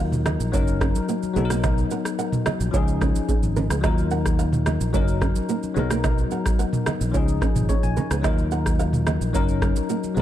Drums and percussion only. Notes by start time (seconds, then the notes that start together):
0.12 mid tom, high conga, shaker
0.26 cross-stick, low conga, shaker
0.40 shaker
0.54 kick, shaker
0.68 shaker
0.81 kick, cross-stick, high conga, shaker
0.95 high conga, shaker
1.09 shaker
1.23 high conga, shaker
1.36 low conga, shaker
1.50 cross-stick, high conga, shaker
1.64 kick, cross-stick, low conga, shaker
1.78 shaker
1.91 shaker
2.05 cross-stick, shaker
2.19 shaker
2.32 mid tom, high conga, shaker
2.46 cross-stick, low conga, shaker
2.60 shaker
2.74 kick, shaker
2.88 shaker
3.01 kick, cross-stick, high conga, shaker
3.15 high conga, shaker
3.29 kick, shaker
3.43 high conga, shaker
3.56 low conga, shaker
3.70 cross-stick, high conga, shaker
3.84 kick, cross-stick, low conga, shaker
3.98 shaker
4.11 shaker
4.26 kick, cross-stick, shaker
4.39 shaker
4.53 mid tom, high conga, shaker
4.66 cross-stick, low conga, shaker
4.81 shaker
4.94 kick, shaker
5.08 shaker
5.21 kick, cross-stick, high conga, shaker
5.36 high conga, shaker
5.49 shaker
5.63 high conga, shaker
5.76 low conga, shaker
5.90 cross-stick, high conga, shaker
6.04 kick, cross-stick, low conga, shaker
6.18 shaker
6.31 high conga, shaker
6.46 kick, cross-stick, shaker
6.59 shaker
6.73 mid tom, high conga, shaker
6.86 cross-stick, low conga, shaker
7.01 shaker
7.14 kick, shaker
7.28 shaker
7.41 kick, cross-stick, high conga, shaker
7.56 mid tom, high conga, shaker
7.69 kick, shaker
7.83 high conga, shaker
7.97 low conga, shaker
8.11 cross-stick, high conga, shaker
8.24 kick, cross-stick, low conga, shaker
8.38 shaker
8.51 shaker
8.66 kick, cross-stick, shaker
8.80 shaker
8.93 mid tom, high conga, shaker
9.07 cross-stick, low conga, shaker
9.21 shaker
9.34 kick, shaker
9.48 shaker
9.62 kick, cross-stick, high conga, shaker
9.76 high conga, shaker
9.89 shaker
10.03 high conga, shaker
10.17 low conga, shaker